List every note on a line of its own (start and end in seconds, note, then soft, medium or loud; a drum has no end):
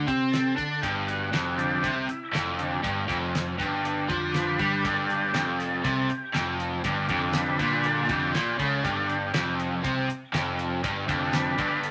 0.08 0.55 C3 medium
0.08 0.56 C4 medium
0.08 kick loud
0.08 closed hi-hat medium
0.32 0.84 A4 medium
0.32 snare medium
0.32 closed hi-hat medium
0.57 0.81 D3 medium
0.57 0.82 D4 medium
0.57 kick medium
0.57 closed hi-hat medium
0.81 1.30 G1 medium
0.81 1.32 G2 loud
0.81 0.93 G4 medium
0.81 kick medium
0.81 closed hi-hat loud
1.07 1.60 F#4 medium
1.07 closed hi-hat medium
1.32 1.80 F1 medium
1.32 1.82 F2 medium
1.32 snare loud
1.32 closed hi-hat medium
1.57 1.91 D3 medium
1.57 1.91 G3 soft
1.57 1.92 D4 medium
1.57 2.10 G4 medium
1.57 closed hi-hat medium
1.82 2.07 C2 medium
1.82 2.07 C3 medium
1.82 kick medium
1.82 closed hi-hat medium
2.08 2.56 E4 medium
2.08 muted picked electric bass stroke soft
2.08 muted overdriven electric guitar stroke medium
2.08 closed hi-hat medium
2.33 2.80 F1 medium
2.33 2.82 F2 loud
2.33 snare medium
2.33 closed hi-hat medium
2.58 2.81 D3 soft
2.58 2.81 G3 soft
2.58 2.81 D4 medium
2.58 closed hi-hat medium
2.83 3.08 G1 medium
2.83 3.07 G2 medium
2.83 kick loud
2.83 closed hi-hat medium
3.08 3.56 F1 medium
3.08 3.58 F2 loud
3.08 kick loud
3.08 closed hi-hat medium
3.35 snare loud
3.35 closed hi-hat medium
3.58 4.06 G1 medium
3.58 4.08 G2 loud
3.58 5.08 D3 medium
3.58 5.08 G3 soft
3.58 5.10 D4 medium
3.58 kick medium
3.58 closed hi-hat medium
3.85 closed hi-hat medium
4.09 4.56 F2 medium
4.09 4.58 F3 loud
4.09 kick loud
4.09 closed hi-hat medium
4.34 4.86 B4 medium
4.34 snare medium
4.34 closed hi-hat medium
4.59 4.83 G2 medium
4.59 4.84 G3 medium
4.59 kick loud
4.59 closed hi-hat medium
4.83 5.31 G1 medium
4.83 5.34 G2 loud
4.83 5.10 A4 medium
4.83 kick loud
4.83 closed hi-hat medium
5.08 5.42 D3 medium
5.08 5.43 G3 soft
5.08 5.43 D4 medium
5.08 5.60 G4 medium
5.08 closed hi-hat medium
5.34 5.82 F1 medium
5.34 5.84 F2 medium
5.34 snare loud
5.34 closed hi-hat medium
5.59 6.11 A4 medium
5.59 closed hi-hat medium
5.84 6.08 C2 medium
5.84 6.08 C3 medium
5.84 kick medium
5.84 closed hi-hat medium
6.09 6.56 G4 medium
6.09 muted overdriven electric guitar stroke medium
6.09 muted picked electric bass stroke soft
6.09 closed hi-hat medium
6.34 6.81 F1 medium
6.34 6.84 F2 loud
6.34 snare medium
6.34 closed hi-hat medium
6.60 closed hi-hat medium
6.84 7.07 G1 medium
6.84 7.09 G2 loud
6.84 8.09 D3 soft
6.84 8.09 G3 soft
6.84 8.09 D4 medium
6.84 kick loud
6.84 closed hi-hat loud
7.09 7.56 F1 medium
7.09 7.59 F2 loud
7.09 kick medium
7.09 closed hi-hat medium
7.33 snare loud
7.33 closed hi-hat medium
7.37 7.87 B4 loud
7.59 8.06 A#1 medium
7.59 8.09 A#2 loud
7.59 kick loud
7.59 closed hi-hat medium
7.84 8.10 A4 loud
7.84 closed hi-hat medium
8.09 8.33 F1 medium
8.09 8.33 F2 loud
8.09 8.32 D3 soft
8.09 8.32 G3 soft
8.09 8.32 D4 medium
8.09 8.57 G4 medium
8.09 kick loud
8.09 closed hi-hat medium
8.34 8.58 A#1 loud
8.34 8.58 A#2 loud
8.34 snare medium
8.34 closed hi-hat medium
8.59 8.83 C#2 loud
8.59 8.84 C#3 medium
8.59 9.06 A4 loud
8.59 kick medium
8.59 closed hi-hat medium
8.84 9.31 G1 loud
8.84 9.33 G2 loud
8.84 9.17 D3 medium
8.84 9.18 G3 soft
8.84 9.18 D4 medium
8.84 kick medium
8.84 closed hi-hat medium
9.09 9.56 G4 medium
9.09 closed hi-hat medium
9.34 9.81 F1 medium
9.34 9.83 F2 medium
9.34 snare loud
9.34 closed hi-hat medium
9.60 closed hi-hat medium
9.84 10.07 C2 medium
9.84 10.08 C3 loud
9.84 kick loud
9.84 closed hi-hat medium
10.09 muted overdriven electric guitar stroke medium
10.09 muted picked electric bass stroke soft
10.09 closed hi-hat medium
10.33 10.81 F1 medium
10.33 10.83 F2 loud
10.33 snare medium
10.33 closed hi-hat medium
10.59 closed hi-hat medium
10.84 11.07 G1 medium
10.84 11.07 G2 loud
10.84 kick loud
10.84 closed hi-hat loud
11.08 11.55 F1 medium
11.08 11.57 F2 medium
11.08 11.80 D3 medium
11.08 11.80 G3 soft
11.08 11.80 D4 medium
11.08 kick loud
11.08 closed hi-hat medium
11.33 11.86 B4 medium
11.33 snare loud
11.33 closed hi-hat medium
11.58 11.91 G1 medium
11.58 11.91 G2 loud
11.58 kick loud
11.58 closed hi-hat medium
11.83 11.91 A4 medium
11.83 closed hi-hat medium